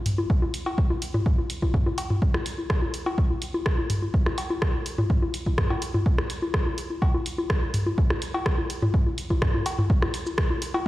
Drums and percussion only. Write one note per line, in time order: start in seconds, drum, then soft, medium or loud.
0.06 mid tom medium
0.06 open hi-hat medium
0.18 low bongo medium
0.30 kick loud
0.42 low bongo medium
0.54 open hi-hat medium
0.66 cowbell medium
0.66 low bongo soft
0.78 kick loud
0.90 low bongo medium
1.02 open hi-hat medium
1.14 mid tom medium
1.14 low bongo medium
1.26 kick loud
1.38 low bongo soft
1.50 open hi-hat medium
1.62 kick medium
1.62 low bongo medium
1.74 kick loud
1.74 mid tom medium
1.86 low bongo medium
1.98 open hi-hat medium
1.98 cowbell medium
2.10 mid tom medium
2.10 low bongo soft
2.22 kick loud
2.34 cross-stick medium
2.34 low bongo medium
2.46 open hi-hat medium
2.58 low bongo soft
2.70 kick loud
2.70 cross-stick medium
2.82 low bongo medium
2.94 open hi-hat medium
3.06 cowbell medium
3.06 low bongo medium
3.18 kick loud
3.30 low bongo soft
3.42 open hi-hat medium
3.54 low bongo medium
3.66 kick loud
3.66 cross-stick medium
3.78 low bongo medium
3.90 mid tom medium
3.90 open hi-hat medium
4.02 low bongo soft
4.14 kick loud
4.26 cross-stick medium
4.26 low bongo medium
4.38 open hi-hat medium
4.38 cowbell medium
4.50 low bongo medium
4.62 kick loud
4.62 cross-stick medium
4.74 low bongo soft
4.86 open hi-hat medium
4.98 mid tom medium
4.98 low bongo medium
5.10 kick loud
5.22 low bongo medium
5.34 open hi-hat medium
5.46 kick medium
5.46 low bongo soft
5.58 kick loud
5.58 cross-stick medium
5.58 mid tom medium
5.70 cowbell medium
5.70 low bongo medium
5.82 open hi-hat medium
5.94 mid tom medium
5.94 low bongo medium
6.06 kick loud
6.18 cross-stick medium
6.18 low bongo soft
6.30 open hi-hat medium
6.42 low bongo medium
6.54 kick loud
6.54 cross-stick medium
6.66 low bongo medium
6.78 open hi-hat medium
6.90 low bongo soft
7.02 kick loud
7.02 cowbell medium
7.14 low bongo medium
7.26 open hi-hat medium
7.38 low bongo medium
7.50 kick loud
7.50 cross-stick medium
7.63 low bongo soft
7.74 mid tom medium
7.74 open hi-hat medium
7.86 low bongo medium
7.98 kick loud
8.10 cross-stick medium
8.10 low bongo medium
8.22 open hi-hat medium
8.34 cowbell medium
8.34 low bongo soft
8.46 kick loud
8.46 cross-stick medium
8.58 low bongo medium
8.70 open hi-hat medium
8.82 mid tom medium
8.82 low bongo medium
8.94 kick loud
9.06 low bongo soft
9.18 open hi-hat medium
9.30 kick medium
9.30 low bongo medium
9.42 kick loud
9.42 cross-stick medium
9.42 mid tom medium
9.54 low bongo medium
9.66 open hi-hat medium
9.66 cowbell medium
9.78 mid tom medium
9.78 low bongo soft
9.90 kick loud
10.02 cross-stick medium
10.02 low bongo medium
10.14 open hi-hat medium
10.26 low bongo soft
10.26 shaker soft
10.38 kick loud
10.38 cross-stick loud
10.50 low bongo medium
10.62 open hi-hat medium
10.74 cowbell medium
10.74 low bongo medium